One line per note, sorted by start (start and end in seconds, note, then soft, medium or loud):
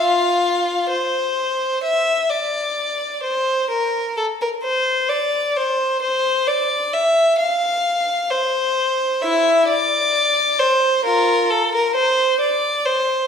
0.00 0.88 F4 medium
0.00 0.90 F5 medium
0.90 1.81 C5 medium
1.84 2.29 E5 medium
2.30 3.24 D5 medium
3.23 3.70 C5 medium
3.70 4.16 A#4 medium
4.17 4.25 A4 medium
4.41 4.49 A#4 soft
4.64 5.09 C5 medium
5.09 5.56 D5 medium
5.56 6.01 C5 medium
6.02 6.47 C5 medium
6.48 6.94 D5 medium
6.93 7.39 E5 medium
7.38 8.29 F5 medium
8.31 9.22 C5 medium
9.22 9.65 E4 medium
9.22 9.68 E5 medium
9.68 10.58 D5 medium
10.59 11.05 C5 medium
11.05 11.48 F4 medium
11.05 11.50 A#4 medium
11.51 11.74 A4 medium
11.75 11.96 A#4 medium
11.95 12.40 C5 medium
12.40 12.85 D5 medium
12.86 13.27 C5 medium